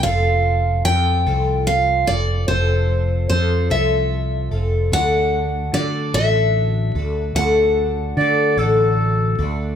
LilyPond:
<<
  \new Staff \with { instrumentName = "Steel-string acoustic guitar" } { \time 6/8 \key f \lydian \tempo 4. = 49 f''4 g''4 f''8 d''8 | c''4 c''8 e''4 r8 | fis''4 d''8 e''4. | fis''2 r4 | }
  \new Staff \with { instrumentName = "Clarinet" } { \time 6/8 \key f \lydian r2. | r2. | r2. | r4 d''8 a'4. | }
  \new Staff \with { instrumentName = "Twelve-string acoustic guitar" } { \time 6/8 \key f \lydian <f c' f' a'>4 <f c' f' a'>8 <f c' f' a'>4 <c' f' a'>8 | <f c' f' a'>4 <f c' f' a'>8 <f c' f' a'>4 <c' f' a'>8 | <d a d' fis' a'>4 <a d' fis' a'>8 <d a d' fis' a'>4 <d' fis' a'>8 | <d a d' fis' a'>4 <a d' fis' a'>8 <d a d' fis' a'>4 <d' fis' a'>8 | }
  \new Staff \with { instrumentName = "Fretless electric bass" } { \clef bass \time 6/8 \key f \lydian f,,4 f,8 c,4 f,,8 | f,,4 f,8 c,4 f,,8 | d,4 d8 a,,4 d,8 | d,4 d8 a,,4 d,8 | }
>>